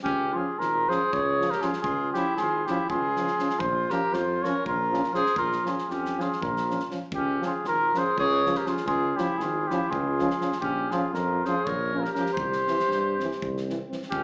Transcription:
0.03 C#2 C#4 G4, kick
0.33 F3 F4 G#4
0.37 C#4
0.57 G#1 F4 A#4, snare
0.89 F3 C#4 G#4 C5, snare
1.13 C#2 G#4 C#5, kick
1.40 F3 C#4, snare
1.51 G4 A#4, snare
1.61 F3 C#4 F4 G#4, snare
1.73 snare
1.81 C#2 F4 G#4, kick
2.13 F3 C#4 E4 G4, snare
2.37 G#1 F4 G#4, snare
2.66 F3 C#4 E4 G4, snare
2.90 C#2 F4 G#4, kick
3.16 F3 C#4, snare
3.27 snare
3.38 F3 C#4, snare
3.50 snare
3.59 A#1 F4 C5, kick
3.90 F3 C#4 G4 A#4, snare
4.13 F2 F4 C5, snare
4.43 F3 C#4 A#4 C#5, snare
4.66 A#1 F4 A#4, kick
4.91 F3 C#4, snare
5.04 snare
5.12 F3 C#4 G#4 C5, snare
5.26 snare
5.36 A#1 F4 A#4, kick
5.52 snare
5.64 F3 C#4 G#4, snare
5.68 F4
5.78 snare
5.88 F2 C#4 G4, snare
6.05 snare
6.17 F3 C#4 G#4, snare
6.21 F4
6.33 snare
6.41 A#1 A#4, kick
6.47 F4
6.57 snare
6.69 F3 C#4, snare
6.80 snare
6.91 F3 C#4, snare
7.11 C#2 G4, kick
7.16 C#4
7.41 F3 C#4, snare
7.45 F4 G#4
7.63 G#1 F4, snare
7.68 A#4
7.93 F3 C#4, snare
7.98 G#4 C5
8.17 C#2 G#4 C#5, kick
8.44 F3 C#4, snare
8.55 G4 A#4, snare
8.65 F3 C#4 F4 G#4, snare
8.77 snare
8.85 C#2 F4 G#4, kick
9.16 F3 C#4 E4 G4, snare
9.38 G#1 G#4, snare
9.42 F4
9.68 F3 C#4 E4 G4, snare
9.90 C#2 F4 G#4, kick
10.19 F3 C#4, snare
10.30 snare
10.40 F3 C#4, snare
10.52 snare
10.60 A#1 C#4 G4, kick
10.90 F3 F4 G#4, snare
10.95 C#4
11.13 F2 F4 A#4, snare
11.45 F3 C#4 G#4 C5, snare
11.64 A#1 A#4 C#5, kick
11.92 F3 C#4
12.01 G4 A#4
12.05 snare
12.13 C#4 G4 A#4, snare
12.17 F3
12.26 snare
12.34 C2 C5, kick
12.39 G4
12.52 snare
12.64 C4, snare
12.69 E3
12.80 snare
12.88 G2, snare
13.17 C4, snare
13.22 E3
13.32 snare
13.42 C2, kick
13.57 snare
13.67 E3 C4, snare
13.87 C4
13.91 E3, snare
14.02 snare
14.08 C#4 G4
14.12 C#2, kick

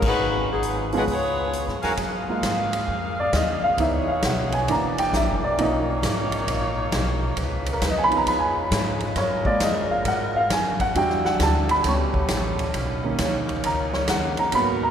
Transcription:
Already playing: G#1
0.02 kick, crash
0.07 G#3 D#4 F#4 B4
0.18 G#1
0.51 F#3 B3 D#4 G#4
0.63 closed hi-hat
0.92 F3 G#3 B3 C#4 G#4, open hi-hat
0.97 G#3 D#4 F#4 B4
1.07 C#2, kick, open hi-hat
1.11 B3 F4 G#4 C#5
1.53 closed hi-hat
1.68 G#2, snare
1.82 F2 F#4 A#4 F5 G#5, snare, open hi-hat
1.97 F#2 A#3 G#4 F5, kick, ride
2.29 G#3 A#3 F4
2.43 G#2, kick, snare, hi-hat pedal, ride
2.73 ride
2.88 F2, kick
3.20 D5
3.33 D#2 D#5, kick, snare, hi-hat pedal, ride
3.64 F5
3.77 C#2 E3 B3 D#4 C#5 E5, kick, ride
4.08 F5, muted upright bass stroke
4.23 B1 F#5, kick, snare, hi-hat pedal, ride
4.52 G#5, ride
4.68 F#1 E3 A#3 D4 F#4 D5 A#5, kick, ride
4.98 G5, ride
5.13 A#1 E5, kick, snare, hi-hat pedal
5.27 F#1
5.43 E1 D5
5.58 B1 F3 A#3 C#4 D#4 F4 C#5 D#5, kick, ride
6.02 G#1, kick, snare, hi-hat pedal, ride
6.32 ride
6.47 A#1, kick, ride
6.92 B1, kick, snare, hi-hat pedal, ride
7.36 C#2 G#3 C#4 F4 B4, kick, ride
7.66 ride
7.73 A#4
7.81 D#2 B4, kick, snare, hi-hat pedal, ride
7.91 D#5
7.98 G#5
8.04 B5
8.09 F3 B3 D#4, ride
8.17 A#5
8.26 F2 B5, kick, ride
8.39 G#5
8.71 G#2, kick, snare, hi-hat pedal, ride
9.00 ride
9.15 F#2 F#3 A#4 C#5, kick, snare, ride
9.45 G#3 A#3 F4 D5, muted upright bass stroke, kick
9.60 F2 D#5, kick, snare, hi-hat pedal, ride
9.91 F5, muted upright bass stroke
10.05 G#2 F#5, kick, ride
10.36 F5
10.50 F#2 G#5, kick, snare, hi-hat pedal, ride
10.80 F#5, kick, ride
10.95 E2 G3 D4 E4 F#4 G5, kick, ride
11.10 snare
11.25 F#5, snare
11.40 D2 A5, kick, snare, hi-hat pedal, ride
11.69 B5, ride
11.84 C#2 G3 A3 B3 C#4 G4, kick, snare, ride
11.88 C#6
12.14 kick
12.28 A1, kick, snare, hi-hat pedal, ride
12.59 ride
12.73 B1 A#3 D#4, kick, ride
13.04 D#3 A#3 C#4
13.19 D#2, kick, snare, hi-hat pedal, ride
13.34 B1
13.49 A#1, ride
13.63 C#2 A#5, kick, ride
13.93 C#5, snare
14.08 D#2 F#5, kick, snare, hi-hat pedal, ride
14.37 A#5, muted upright bass stroke, ride
14.52 G#2 F#3 G#3 A#3 B3 F#4 A#4 B5, kick, ride
14.83 A#5

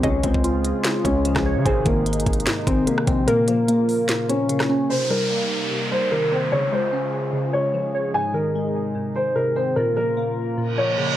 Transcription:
0.03 C#2 C#3 G#3 C#4 F4 G#4 D#5, kick, closed hi-hat
0.23 C#2 G#3 C4, kick, closed hi-hat
0.34 kick
0.44 F4, closed hi-hat
0.65 closed hi-hat
0.84 C#3, snare, closed hi-hat
1.04 C#2 G#3 C#4 C#5, kick, closed hi-hat
1.25 F3, closed hi-hat
1.36 C#2, kick, cross-stick, snare
1.46 C#5
1.56 C#3
1.65 G#1 G#2 C3 D#3 D#4 G#4 C5, kick, closed hi-hat
1.85 G#1 D#3 A#3, kick, closed hi-hat
2.06 G#3, closed hi-hat
2.13 closed hi-hat
2.20 closed hi-hat
2.26 G#1, kick, closed hi-hat
2.33 closed hi-hat
2.40 closed hi-hat
2.46 G#2, snare, closed hi-hat
2.67 G#1 D#3 C4, kick, closed hi-hat
2.87 C3 A#3, closed hi-hat
2.98 cross-stick
3.07 A#1 C4, kick, closed hi-hat
3.27 A#2 C#3 A#3 F4 A#4, closed hi-hat
3.48 F3 A#3, closed hi-hat
3.68 A#3, closed hi-hat
3.89 open hi-hat
4.09 A#2, snare, closed hi-hat
4.29 F3 C#4, closed hi-hat
4.49 C#3, closed hi-hat
4.60 cross-stick, snare
4.70 C#4
4.90 C3 G3 D#4 A#4 C5, downlifter
5.10 G3 A#4
5.31 A#3
5.71 C3
5.91 G3 C5
6.12 D#3 A#4
6.32 C4 C5
6.52 C#3 G#3 F4 G#4 C#5
6.72 G#3 C5
6.93 C#4
7.33 C#3
7.53 G#3 C#5
7.74 F3
7.95 C#5
8.14 G#2 C3 D#4 G#5
8.34 D#3 A#4
8.55 G#3
8.95 G#2
9.16 D#3 C5
9.36 C3 A#4
9.56 C4 C5
9.76 A#2 C#3 A#3 F4 A#4
9.97 F3 A#4
10.17 A#3
10.57 A#2, reverse cymbal
10.77 F3 C#5
10.98 C#3

